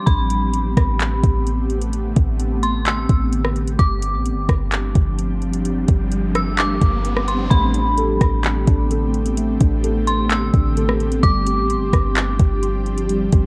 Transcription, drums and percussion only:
0.07 kick, closed hi-hat
0.30 closed hi-hat
0.53 closed hi-hat
0.77 kick, cross-stick, closed hi-hat
1.00 clap, closed hi-hat
1.23 kick, closed hi-hat
1.47 closed hi-hat
1.70 closed hi-hat
1.81 closed hi-hat
1.93 closed hi-hat
2.16 kick, closed hi-hat
2.40 closed hi-hat
2.63 closed hi-hat
2.86 clap, closed hi-hat
3.09 kick, closed hi-hat
3.33 closed hi-hat
3.45 cross-stick
3.56 closed hi-hat
3.67 closed hi-hat
3.79 kick, closed hi-hat
4.02 closed hi-hat
4.26 closed hi-hat
4.49 kick, cross-stick, closed hi-hat
4.72 clap, closed hi-hat
4.95 kick, closed hi-hat
5.19 closed hi-hat
5.42 closed hi-hat
5.54 closed hi-hat
5.65 closed hi-hat
5.88 kick, closed hi-hat
6.12 closed hi-hat
6.35 cross-stick, closed hi-hat
6.58 clap, closed hi-hat
6.81 kick, closed hi-hat
7.05 closed hi-hat
7.17 cross-stick
7.28 closed hi-hat
7.51 kick, closed hi-hat
7.74 closed hi-hat
7.98 closed hi-hat
8.21 kick, cross-stick, closed hi-hat
8.44 clap, closed hi-hat
8.67 kick, closed hi-hat
8.91 closed hi-hat
9.14 closed hi-hat
9.26 closed hi-hat
9.37 closed hi-hat
9.60 kick, closed hi-hat
9.84 closed hi-hat
10.07 closed hi-hat
10.30 clap, closed hi-hat
10.54 kick, closed hi-hat
10.77 closed hi-hat
10.89 cross-stick
11.00 closed hi-hat
11.12 closed hi-hat
11.23 kick, closed hi-hat
11.46 closed hi-hat
11.70 closed hi-hat
11.93 kick, cross-stick, closed hi-hat
12.16 clap, closed hi-hat
12.39 kick, closed hi-hat
12.63 closed hi-hat
12.86 closed hi-hat
12.98 closed hi-hat
13.09 closed hi-hat
13.32 kick, closed hi-hat

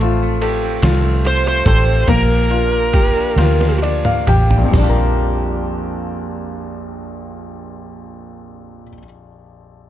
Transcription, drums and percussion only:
0.01 ride
0.42 ride
0.82 snare, ride
1.25 ride
1.66 kick, ride
2.08 kick, ride
2.50 ride
2.93 kick, ride
3.38 snare, ride
3.61 snare
3.83 ride
4.05 mid tom
4.27 mid tom, ride
4.51 floor tom
4.74 kick, floor tom, open hi-hat

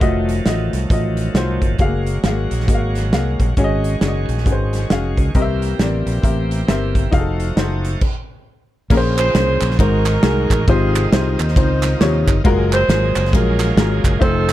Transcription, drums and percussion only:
0.01 kick, closed hi-hat
0.29 closed hi-hat
0.46 snare, closed hi-hat
0.73 closed hi-hat
0.90 kick, closed hi-hat
1.17 closed hi-hat
1.35 snare, closed hi-hat
1.62 kick, closed hi-hat
1.79 kick, closed hi-hat
2.06 closed hi-hat
2.24 snare, closed hi-hat
2.51 closed hi-hat
2.60 snare
2.68 kick, closed hi-hat
2.95 snare, closed hi-hat
3.13 snare, closed hi-hat
3.40 kick, closed hi-hat
3.57 kick, closed hi-hat
3.84 closed hi-hat
4.01 snare, closed hi-hat
4.29 closed hi-hat
4.38 snare
4.46 kick, closed hi-hat
4.73 snare, closed hi-hat
4.90 snare, closed hi-hat
5.17 kick, closed hi-hat
5.35 kick, closed hi-hat
5.62 closed hi-hat
5.79 snare, closed hi-hat
6.07 closed hi-hat
6.24 kick, closed hi-hat
6.51 closed hi-hat
6.68 snare, closed hi-hat
6.95 kick, closed hi-hat
7.13 kick, closed hi-hat
7.40 closed hi-hat
7.57 snare, closed hi-hat
7.85 closed hi-hat
8.01 kick, crash
8.90 kick, crash
9.17 clap, ride
9.35 snare, ride
9.61 clap, ride
9.71 snare
9.79 kick, ride
10.06 snare, clap, ride
10.23 snare, ride
10.50 kick, clap, ride
10.68 kick, ride
10.95 clap, ride
11.13 snare, ride
11.40 clap, ride
11.48 snare
11.56 kick, ride
11.83 snare, clap, ride
12.01 snare, ride
12.28 kick, clap, ride
12.45 kick, ride
12.72 clap, ride
12.90 snare, ride
13.16 clap, ride
13.25 snare
13.33 kick, ride
13.60 snare, clap, ride
13.77 snare, ride
14.04 kick, clap, ride
14.22 kick, ride
14.49 clap, ride

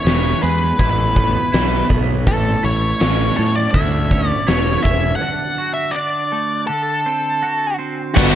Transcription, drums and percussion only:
0.06 snare, closed hi-hat
0.43 closed hi-hat
0.79 kick, closed hi-hat
1.16 kick, closed hi-hat
1.54 snare, closed hi-hat
1.90 kick, closed hi-hat
2.27 kick, closed hi-hat
2.64 closed hi-hat
3.00 snare, closed hi-hat
3.37 closed hi-hat
3.74 kick, closed hi-hat
4.11 kick, closed hi-hat
4.48 snare, closed hi-hat
4.85 kick, closed hi-hat
8.17 kick, crash

